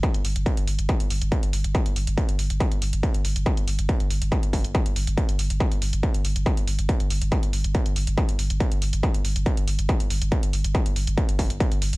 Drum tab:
HH |xxoxxxoxxxoxxxox|xxoxxxoxxxoxxxox|xxoxxxoxxxoxxxox|xxoxxxoxxxoxxxox|
BD |o---o---o---o---|o---o---o---o---|o---o---o-o-o---|o---o---o---o---|

HH |xxoxxxoxxxoxxxox|xxoxxxoxxxoxxxox|xxoxxxoxxxoxxxox|
BD |o---o---o---o---|o---o---o---o---|o---o---o-o-o---|